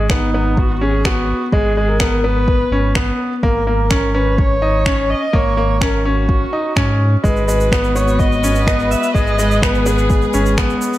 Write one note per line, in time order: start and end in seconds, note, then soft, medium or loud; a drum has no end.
0.00 1.33 G#1 medium
0.10 0.29 B3 medium
0.10 0.59 D#4 medium
0.10 finger snap medium
0.10 kick medium
0.34 0.71 B3 medium
0.57 0.84 F#4 medium
0.57 kick medium
0.81 1.00 C#4 medium
0.81 1.08 G#4 medium
1.05 1.42 B3 medium
1.05 1.53 F#4 medium
1.05 finger snap medium
1.05 kick loud
1.52 2.64 G#1 loud
1.52 1.71 G#3 medium
1.52 1.89 G#4 medium
1.52 kick loud
1.77 1.95 G#3 medium
1.88 2.26 A#4 medium
2.00 2.19 B3 medium
2.00 finger snap loud
2.00 kick medium
2.24 2.61 B3 medium
2.24 2.96 B4 loud
2.48 kick medium
2.71 3.12 G#1 medium
2.71 2.90 C#4 medium
2.95 3.32 B3 medium
2.95 finger snap medium
2.95 kick loud
3.43 5.14 G#1 loud
3.43 3.61 A#3 medium
3.43 4.16 A#4 medium
3.43 kick medium
3.67 3.85 A#3 medium
3.90 4.09 C#4 medium
3.90 finger snap medium
3.90 kick loud
4.14 4.51 C#4 medium
4.14 4.39 B4 loud
4.38 5.12 C#5 loud
4.38 kick loud
4.62 4.80 D#4 medium
4.86 5.22 C#4 medium
4.86 finger snap medium
4.86 kick loud
5.10 5.36 D#5 medium
5.33 6.45 G#1 medium
5.33 5.52 A#3 medium
5.33 5.84 C#5 loud
5.33 kick loud
5.57 5.76 A#3 medium
5.81 6.00 C#4 medium
5.81 6.09 A#4 medium
5.81 finger snap medium
5.81 kick medium
6.05 6.42 C#4 medium
6.05 7.02 F#4 medium
6.29 kick loud
6.53 6.71 D#4 medium
6.76 7.17 G#2 medium
6.76 7.13 C#4 medium
6.76 finger snap medium
6.76 kick loud
7.23 8.95 G#1 loud
7.23 10.98 G#3 medium
7.23 7.42 G#3 medium
7.23 9.13 F#4 medium
7.23 10.98 B4 medium
7.23 7.97 B4 medium
7.23 kick medium
7.23 shaker soft
7.37 shaker soft
7.48 7.66 G#3 medium
7.48 shaker medium
7.61 shaker soft
7.72 7.91 B3 medium
7.72 finger snap medium
7.72 kick loud
7.72 shaker soft
7.84 shaker soft
7.95 8.32 B3 medium
7.95 8.20 C#5 loud
7.95 shaker medium
8.08 shaker soft
8.19 8.92 D#5 loud
8.19 kick loud
8.19 shaker soft
8.32 shaker soft
8.44 8.62 C#4 medium
8.44 shaker medium
8.56 shaker soft
8.67 9.04 B3 medium
8.67 finger snap medium
8.67 kick loud
8.67 shaker soft
8.79 shaker soft
8.91 9.14 E5 loud
8.91 shaker medium
9.03 shaker soft
9.14 10.26 G#1 loud
9.14 9.33 G#3 medium
9.14 10.98 G#4 medium
9.14 9.63 D#5 loud
9.14 kick medium
9.14 shaker soft
9.27 shaker soft
9.39 9.57 G#3 medium
9.39 shaker medium
9.51 shaker soft
9.62 9.81 B3 medium
9.62 9.88 B4 medium
9.62 finger snap medium
9.62 kick medium
9.62 shaker soft
9.75 shaker soft
9.86 10.23 B3 medium
9.86 10.82 G#4 loud
9.86 shaker medium
9.98 shaker soft
10.10 kick medium
10.10 shaker soft
10.22 shaker soft
10.34 10.74 G#1 medium
10.34 10.52 C#4 medium
10.34 shaker medium
10.46 shaker soft
10.58 10.94 B3 medium
10.58 finger snap medium
10.58 kick loud
10.58 shaker soft
10.70 shaker soft
10.82 shaker medium
10.93 shaker soft